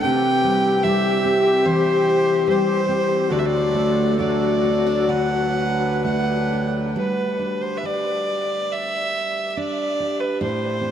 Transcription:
0.00 3.32 C3 medium
0.00 0.10 D3 medium
0.00 3.28 E3 medium
0.00 0.10 A3 medium
0.00 1.63 C4 medium
0.00 0.11 D4 medium
0.00 0.10 F#4 medium
0.00 3.30 G4 loud
0.00 3.28 G4 medium
0.00 0.85 G5 loud
0.44 0.83 G3 medium
0.84 2.47 G3 medium
0.84 1.24 C4 soft
0.84 3.41 G4 medium
0.84 1.67 E5 medium
1.25 2.88 C4 medium
1.65 3.39 E3 medium
1.65 3.29 C4 medium
1.65 2.47 C5 medium
2.48 3.40 G3 medium
2.48 3.33 C5 medium
2.89 3.40 C4 medium
3.28 6.95 D2 medium
3.28 6.90 F#3 medium
3.28 6.90 D4 medium
3.28 6.49 F#4 medium
3.28 5.05 A4 medium
3.28 3.40 D5 medium
3.39 3.47 E5 medium
3.46 4.19 D5 medium
3.74 4.18 A3 medium
4.19 6.02 A3 medium
4.19 4.64 D4 soft
4.19 7.05 F#4 medium
4.19 5.11 D5 medium
4.64 4.86 C4 soft
4.86 6.51 D4 soft
5.08 6.96 D3 medium
5.08 6.94 B4 medium
5.08 6.03 F#5 medium
6.04 7.05 A3 soft
6.04 6.70 F#5 medium
6.52 7.39 D4 soft
6.96 10.44 G3 medium
6.96 7.63 B4 medium
7.39 9.56 D4 soft
7.62 7.79 C5 medium
7.77 7.87 E5 medium
7.83 10.00 G4 medium
7.83 8.74 D5 medium
8.72 9.50 E5 medium
9.50 9.59 E5 medium
9.57 10.49 D4 soft
9.57 10.22 D5 medium
10.00 10.91 G4 medium
10.20 10.41 B4 medium
10.41 10.91 A2 medium
10.41 10.91 C5 medium
10.81 10.91 C4 medium

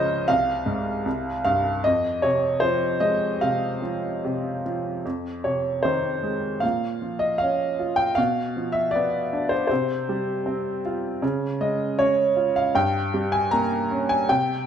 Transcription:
0.00 0.24 C#2 medium
0.00 0.25 G#2 soft
0.00 0.27 C#3 soft
0.00 0.27 F3 soft
0.00 0.30 C5 medium
0.00 0.30 C#5 medium
0.00 0.29 D#5 medium
0.28 1.03 C2 medium
0.28 1.43 F5 medium
0.66 1.04 G#2 soft
1.05 1.82 C2 medium
1.44 1.83 G2 soft
1.44 1.85 F5 medium
1.84 5.01 F2 medium
1.84 2.24 D#5 medium
2.22 3.40 C3 medium
2.22 2.63 C#5 medium
2.60 3.81 F3 medium
2.60 3.01 C5 medium
3.00 4.60 G#3 soft
3.00 3.42 D#5 medium
3.41 4.23 C3 medium
3.41 4.61 F5 medium
3.82 4.64 F3 soft
4.24 5.03 C3 medium
4.66 5.04 F3 soft
5.05 6.60 F2 soft
5.44 6.60 C3 soft
5.44 5.81 C#5 medium
5.83 6.61 D#3 soft
5.83 6.58 C5 medium
6.23 6.62 G#3 soft
6.60 8.14 A#2 medium
6.60 7.22 F5 medium
7.02 8.14 F3 soft
7.19 7.40 D#5 medium
7.38 8.16 C#4 soft
7.38 7.99 F5 medium
7.79 8.17 F4 soft
7.96 8.17 G5 medium
8.15 9.66 B2 medium
8.15 8.75 F5 medium
8.57 9.67 F3 soft
8.72 8.93 E5 medium
8.91 9.51 D5 medium
8.96 9.69 B3 soft
9.33 9.69 D4 soft
9.49 9.66 C5 medium
9.67 11.19 C3 medium
9.67 10.79 C5 medium
10.09 11.19 G3 soft
10.46 11.20 C4 soft
10.85 11.22 F4 soft
11.22 12.70 C#3 medium
11.61 12.71 G#3 soft
11.61 11.99 D#5 medium
11.99 12.72 C#4 soft
11.99 12.51 C#5 medium
12.36 12.73 F4 soft
12.56 12.75 F5 medium
12.75 14.25 G2 medium
12.75 13.34 G5 medium
13.14 14.26 G3 soft
13.32 13.50 G#5 medium
13.51 14.27 A#3 soft
13.51 14.11 A#5 medium
13.91 14.28 C#4 soft
14.09 14.27 G#5 medium
14.29 14.66 C3 medium
14.29 14.66 G5 medium

